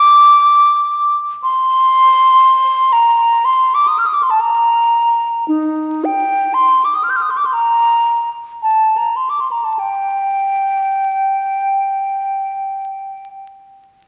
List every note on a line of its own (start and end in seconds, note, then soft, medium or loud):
0.00 1.17 D6 loud
1.43 2.94 C6 loud
2.93 3.46 A#5 medium
3.45 3.76 C6 medium
3.74 3.89 D6 medium
3.88 4.00 D#6 medium
3.99 4.08 F6 medium
4.06 4.15 D#6 medium
4.14 4.24 D6 medium
4.23 4.32 C6 medium
4.30 4.42 A5 medium
4.40 5.47 A#5 medium
5.48 6.06 D#4 medium
6.04 6.55 G5 medium
6.54 6.86 C6 medium
6.85 6.96 D6 soft
6.95 7.05 D#6 medium
7.04 7.11 F6 medium
7.10 7.18 G6 medium
7.16 7.23 F6 medium
7.22 7.32 D#6 medium
7.30 7.39 C6 soft
7.37 7.47 D6 medium
7.46 7.55 C6 medium
7.53 8.30 A#5 medium
8.63 8.99 A5 medium
8.97 9.18 A#5 medium
9.16 9.31 C6 soft
9.30 9.42 D6 soft
9.40 9.53 C6 medium
9.51 9.66 A#5 soft
9.64 9.81 A5 soft
9.79 13.28 G5 medium